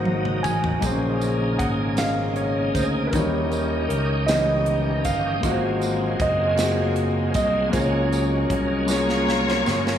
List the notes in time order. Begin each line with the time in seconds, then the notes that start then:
Already playing: G#1 G#2 D#3 F#3 A#3 D#4 F#4 C5 F#5
0.05 high tom
0.25 mid tom
0.43 A1 G#5, mid tom, tambourine
0.64 floor tom
0.81 A#1 A#2 C#3 A#3 C4 G#4, kick, closed hi-hat, tambourine
0.85 C#4 C5
1.21 closed hi-hat, tambourine
1.59 G#1 F#5, kick, closed hi-hat
1.96 A#3 C#4 G#4 D#5 F5, snare, closed hi-hat, tambourine
2.36 C#5, closed hi-hat
2.75 D2 C5, kick, closed hi-hat, tambourine
3.07 A#4 B4
3.12 D#2 D#3 E3 C#4 D#4 E4 G4 C#5 D#5, kick, closed hi-hat, tambourine
3.19 G3
3.52 closed hi-hat, tambourine
3.89 C#2 A#4, closed hi-hat
4.27 E3 D#4 E4 D#5, snare, closed hi-hat, tambourine
4.31 G3 A#4
4.66 closed hi-hat
5.05 G1 F5, kick, closed hi-hat, tambourine
5.41 G#1 G#2 F#3 A#3 C4 F4 F#4 G#4, kick, closed hi-hat, tambourine
5.45 A#3 A#4
5.51 C5
5.82 closed hi-hat, tambourine
6.20 F#1 D#5, kick, closed hi-hat
6.57 A#3 F4 F#4, snare, closed hi-hat, tambourine
6.61 G#4
6.96 closed hi-hat
7.34 C2 D#5, kick, closed hi-hat, tambourine
7.70 C#2 A#3 C#4 F4 G#4 C#5, kick, closed hi-hat
7.74 G#4 C#5, tambourine
8.12 closed hi-hat, tambourine
8.50 C2, kick, closed hi-hat
8.86 A#3 F4 G#4, snare, tambourine
8.90 F4 A#4 C#5
9.09 snare
9.29 snare
9.48 snare
9.66 G1, snare, tambourine
9.87 snare